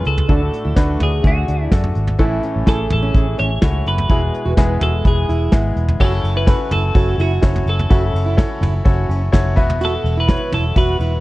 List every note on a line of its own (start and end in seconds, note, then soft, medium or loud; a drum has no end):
0.00 0.31 G#2 medium
0.00 0.31 G#3 medium
0.00 0.31 C#4 medium
0.00 0.31 F4 medium
0.00 0.31 G#4 medium
0.00 0.31 B4 medium
0.05 0.25 C#2 medium
0.05 1.03 A4 medium
0.05 closed hi-hat medium
0.17 floor tom medium
0.28 0.48 D2 loud
0.28 0.96 A2 medium
0.28 0.68 A3 medium
0.28 0.40 D4 medium
0.28 0.68 D4 medium
0.28 0.68 F#4 medium
0.28 0.68 A4 medium
0.28 kick loud
0.28 closed hi-hat medium
0.53 closed hi-hat medium
0.64 0.75 D2 medium
0.64 0.76 E4 medium
0.76 0.96 D2 medium
0.76 1.15 A3 medium
0.76 1.15 D4 medium
0.76 0.99 D4 medium
0.76 1.15 F#4 medium
0.76 1.15 B4 medium
0.76 kick loud
0.76 snare loud
0.76 closed hi-hat medium
1.00 1.20 D2 medium
1.00 1.12 E4 medium
1.00 1.26 G#4 medium
1.00 closed hi-hat medium
1.00 floor tom medium
1.23 1.44 D2 loud
1.23 1.62 A3 medium
1.23 1.62 D4 medium
1.23 1.63 F#4 medium
1.23 1.63 G#4 medium
1.23 kick loud
1.23 closed hi-hat medium
1.27 1.70 F#4 medium
1.48 1.68 D2 medium
1.48 1.82 D4 medium
1.48 closed hi-hat medium
1.71 1.91 F#2 medium
1.71 2.10 A3 medium
1.71 2.10 D4 medium
1.71 2.10 F#4 medium
1.71 2.11 A4 medium
1.71 kick loud
1.71 snare loud
1.71 closed hi-hat medium
1.84 floor tom medium
1.95 2.15 G#1 medium
1.95 closed hi-hat medium
2.07 floor tom medium
2.18 2.39 A1 loud
2.18 2.87 A2 medium
2.18 2.87 E3 medium
2.18 2.58 A3 medium
2.18 2.58 C#4 medium
2.18 2.58 E4 medium
2.18 2.42 E4 medium
2.18 2.58 A4 loud
2.18 kick loud
2.18 closed hi-hat medium
2.43 2.66 C#4 medium
2.43 closed hi-hat medium
2.56 2.65 A1 loud
2.66 2.86 A1 medium
2.66 3.05 A3 medium
2.66 3.05 C#4 medium
2.66 3.05 E4 medium
2.66 2.78 E4 medium
2.66 3.06 G#4 medium
2.66 2.91 A4 medium
2.66 kick loud
2.66 snare loud
2.66 closed hi-hat medium
2.90 3.11 A1 medium
2.90 3.39 A4 medium
2.90 closed hi-hat medium
2.90 floor tom medium
3.03 3.25 C#4 medium
3.14 3.34 A1 medium
3.14 3.53 A3 medium
3.14 3.53 C#4 medium
3.14 3.53 E4 medium
3.14 3.53 G#4 medium
3.14 kick loud
3.14 closed hi-hat medium
3.38 3.59 A1 medium
3.38 3.50 C#4 medium
3.38 3.87 C#5 loud
3.38 closed hi-hat medium
3.62 3.82 C#2 medium
3.62 4.01 A3 medium
3.62 4.01 C#4 medium
3.62 4.01 E4 medium
3.62 4.01 F#4 medium
3.62 kick loud
3.62 snare loud
3.62 closed hi-hat medium
3.86 4.06 F#1 medium
3.86 4.82 B4 medium
3.86 closed hi-hat medium
3.98 floor tom medium
4.09 4.29 E1 loud
4.09 4.78 B2 medium
4.09 4.49 G#3 medium
4.09 4.49 B3 medium
4.09 4.21 E4 medium
4.09 4.49 E4 medium
4.09 4.49 G#4 medium
4.09 kick loud
4.09 closed hi-hat medium
4.34 closed hi-hat medium
4.46 4.56 E1 medium
4.46 4.57 F#4 medium
4.57 4.77 E1 medium
4.57 4.96 G#3 medium
4.57 4.96 B3 medium
4.57 4.80 E4 medium
4.57 4.96 E4 medium
4.57 4.97 G#4 loud
4.57 kick loud
4.57 snare loud
4.57 closed hi-hat medium
4.81 5.01 E1 medium
4.81 4.93 F#4 medium
4.81 5.04 A4 medium
4.81 closed hi-hat medium
4.81 floor tom medium
5.05 5.25 E1 medium
5.05 5.44 G#3 medium
5.05 5.44 B3 medium
5.05 5.44 E4 medium
5.05 5.44 G#4 medium
5.05 5.51 G#4 medium
5.05 kick loud
5.05 closed hi-hat medium
5.29 5.49 E1 loud
5.29 5.63 E4 medium
5.29 closed hi-hat medium
5.52 5.72 G#1 medium
5.52 5.91 G#3 medium
5.52 5.91 B3 medium
5.52 5.91 E4 medium
5.52 5.91 G#4 medium
5.52 kick loud
5.52 snare loud
5.52 closed hi-hat medium
5.76 5.96 E1 medium
5.76 closed hi-hat medium
5.89 floor tom medium
6.00 6.20 F#1 loud
6.00 6.68 C#3 medium
6.00 6.39 C#4 medium
6.00 6.39 E4 medium
6.00 6.39 F#4 medium
6.00 6.12 F#4 loud
6.00 6.39 A4 medium
6.00 6.34 A4 loud
6.00 6.39 C#5 medium
6.00 kick loud
6.00 crash medium
6.24 6.53 F#1 medium
6.24 ride medium
6.36 6.59 E4 medium
6.36 6.72 B4 loud
6.47 6.86 C#4 medium
6.47 6.86 E4 medium
6.47 6.86 F#4 medium
6.47 6.86 A4 medium
6.47 6.86 B4 medium
6.47 kick loud
6.47 snare loud
6.47 ride medium
6.71 6.91 F#1 loud
6.71 6.83 E4 medium
6.71 7.21 A4 medium
6.71 floor tom medium
6.71 ride medium
6.95 7.15 F#1 loud
6.95 7.34 C#4 medium
6.95 7.34 E4 medium
6.95 7.18 F#4 medium
6.95 7.34 F#4 medium
6.95 7.34 A4 medium
6.95 7.34 C#5 medium
6.95 kick loud
6.95 ride medium
7.18 7.38 F#1 loud
7.18 7.31 E4 medium
7.18 7.69 F#4 medium
7.18 ride medium
7.42 7.63 F#1 loud
7.42 7.81 C#4 medium
7.42 7.81 E4 medium
7.42 7.81 F#4 medium
7.42 7.81 A4 medium
7.42 7.82 C#5 medium
7.42 kick loud
7.42 snare loud
7.42 ride medium
7.56 floor tom medium
7.66 7.86 F#1 medium
7.66 9.55 A4 medium
7.66 ride soft
7.79 floor tom medium
7.90 8.10 F#1 loud
7.90 8.58 C#3 medium
7.90 8.29 C#4 medium
7.90 8.29 E4 medium
7.90 8.29 F#4 medium
7.90 8.02 F#4 loud
7.90 8.29 A4 medium
7.90 8.29 E5 medium
7.90 kick loud
7.90 ride medium
8.13 8.43 F#1 medium
8.13 ride medium
8.26 8.49 E4 medium
8.37 8.76 C#4 medium
8.37 8.77 E4 medium
8.37 8.77 F#4 medium
8.37 8.77 A4 medium
8.37 8.77 C#5 medium
8.37 kick loud
8.37 snare loud
8.37 ride medium
8.61 8.81 F#1 loud
8.61 8.73 E4 medium
8.61 floor tom medium
8.61 ride medium
8.84 9.05 F#1 medium
8.84 9.24 C#4 medium
8.84 9.24 E4 medium
8.84 9.24 F#4 medium
8.84 9.08 F#4 medium
8.84 9.24 A4 medium
8.84 9.24 C#5 medium
8.84 kick loud
8.84 ride medium
9.09 9.29 F#1 medium
9.09 9.21 C#4 medium
9.09 ride medium
9.32 9.57 F#1 loud
9.32 9.57 C#4 medium
9.32 9.55 E4 medium
9.32 9.55 F#4 medium
9.32 9.57 A4 medium
9.32 9.57 C#5 loud
9.32 kick loud
9.32 snare loud
9.32 ride medium
9.56 9.96 E1 medium
9.56 10.24 B2 medium
9.56 10.15 B3 loud
9.56 10.15 E4 medium
9.56 10.15 F#4 medium
9.56 10.15 B4 medium
9.56 10.15 E5 loud
9.56 kick medium
9.56 ride medium
9.70 floor tom medium
9.81 9.93 F#4 medium
9.81 10.20 A4 loud
9.81 ride medium
10.04 10.34 E1 medium
10.04 ride medium
10.17 10.40 E4 medium
10.17 10.54 B4 medium
10.27 10.67 B3 medium
10.27 10.67 E4 medium
10.27 10.67 F#4 medium
10.27 10.67 B4 medium
10.27 10.68 C#5 medium
10.27 kick loud
10.27 snare loud
10.27 ride medium
10.52 10.72 E1 medium
10.52 10.64 E4 medium
10.52 10.77 A4 medium
10.52 floor tom medium
10.52 ride medium
10.76 10.96 E1 medium
10.76 11.15 B3 medium
10.76 11.15 E4 medium
10.76 11.15 F#4 medium
10.76 11.00 F#4 medium
10.76 11.15 B4 medium
10.76 11.20 B4 loud
10.76 11.15 E5 medium
10.76 kick loud
10.76 ride medium
10.99 11.19 E1 medium
10.99 11.12 E4 medium
10.99 ride medium